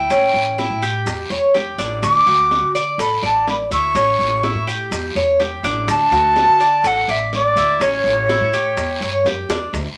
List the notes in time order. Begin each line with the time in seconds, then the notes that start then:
Already playing: G5
0.10 A1 C#4, high bongo, long guiro, maracas
0.34 A1, maracas
0.58 E4, high bongo, short guiro, maracas
0.70 A2
0.82 G4, high bongo, short guiro, maracas
1.06 E2, high bongo, long guiro, maracas
1.30 E2 C#5, high bongo, maracas
1.54 G4, high bongo, low bongo, short guiro, maracas
1.78 A1 D4, high bongo, short guiro, maracas
2.03 D2 D6, high bongo, long guiro, maracas
2.26 D2 F#4, maracas
2.51 high bongo, short guiro, maracas
2.62 D3
2.75 D5, high bongo, short guiro, maracas
2.98 A1 A4 B5, high bongo, long guiro, maracas
3.22 A1 D5 A5, high bongo, maracas
3.48 B5, high bongo, low bongo, short guiro, maracas
3.71 D2 E4 C#6, high bongo, short guiro, maracas
3.95 A1 C#4, high bongo, long guiro, maracas
4.19 A1, maracas
4.43 E4, high bongo, short guiro, maracas
4.55 A2
4.67 G4, high bongo, short guiro, maracas
4.91 E2, high bongo, long guiro, maracas
5.15 E2 C#5, high bongo, maracas
5.40 G4, high bongo, low bongo, short guiro, maracas
5.63 A1 D4, high bongo, short guiro, maracas
5.87 D2 A5, high bongo, long guiro, maracas
6.11 D2 F#4, maracas
6.36 high bongo, short guiro, maracas
6.47 D3
6.60 D5, high bongo, short guiro, maracas
6.83 A1 A4 F#5, high bongo, long guiro, maracas
7.08 A1 D5 E5, high bongo, maracas
7.33 D5, high bongo, low bongo, short guiro, maracas
7.56 D2 E4, high bongo, short guiro, maracas
7.80 A1 C#4 C#5, high bongo, long guiro, maracas
8.04 A1, maracas
8.29 E4, high bongo, short guiro, maracas
8.40 A2
8.53 G4, high bongo, short guiro, maracas
8.77 E2, high bongo, long guiro, maracas
9.01 G2 C#5, high bongo, maracas
9.25 F#2 G4, high bongo, low bongo, short guiro, maracas
9.49 E2 D4, high bongo, short guiro, maracas
9.73 D2, high bongo, long guiro, maracas